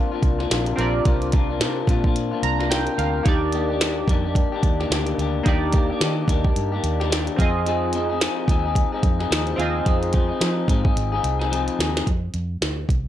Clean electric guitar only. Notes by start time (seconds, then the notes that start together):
Already playing: A#3 D4 F4
0.12 A#3 D4 F4
0.39 A#3 D4 F4
0.50 C3 A#3 D4 F4
0.77 C3 A#3 D4 F4
1.05 C3 A#3 D4 F4
1.32 C3 A#3 D4 F4
1.49 A#3 D4 F4
1.60 C3 A#3 D4 F4
1.87 C3 A#3 D4 F4
2.04 A#3 D4 F4
2.31 A#3 D4 F4
2.59 A#3 D4 F4
2.70 C3 A#3 D4 F4
2.97 C3 A#3 D4 F4
3.26 D#3 A#3 D4 G4
3.53 D#3 A#3 D4 G4
3.70 A#3 D4 G4
3.81 D#3 A#3 D4 G4
3.97 A#3 D4 G4
4.08 D#3 A#3 D4 G4
4.24 A#3 D4 G4
4.52 A#3 D4 G4
4.80 A#3 D4 G4
4.91 D#3 A#3 D4 G4
5.18 D#3 A#3 D4 G4
5.46 D#3 A#3 D4 G4
5.73 D#3 A#3 D4 G4
5.90 A#3 D4 G4
6.01 D#3 A#3 D4 G4
6.29 D#3 A#3 D4 G4
6.45 A#3 D4 G4
6.72 A#3 D4 G4
7.00 A#3 D4 G4
7.10 D#3 A#3 D4 G4
7.38 F3 C4 D#4 G#4
7.66 F3 C4 D#4 G#4
7.94 F3 C4 D#4 G#4
8.09 C4 D#4 G#4
8.20 F3 C4 D#4 G#4
8.48 F3 C4 D#4 G#4
8.65 C4 D#4 G#4
8.92 C4 D#4 G#4
9.19 C4 D#4 G#4
9.30 F3 C4 D#4 G#4
9.58 F3 C4 D#4 G#4
9.85 F3 C4 D#4 G#4
10.13 F3 C4 D#4 G#4
10.29 C4 D#4 G#4
10.40 F3 C4 D#4 G#4
10.68 F3 C4 D#4 G#4
10.84 C4 D#4 G#4
11.12 C4 D#4 G#4
11.39 C4 D#4 G#4
11.51 F3 C4 D#4 G#4
11.79 F3 C4 D#4 G#4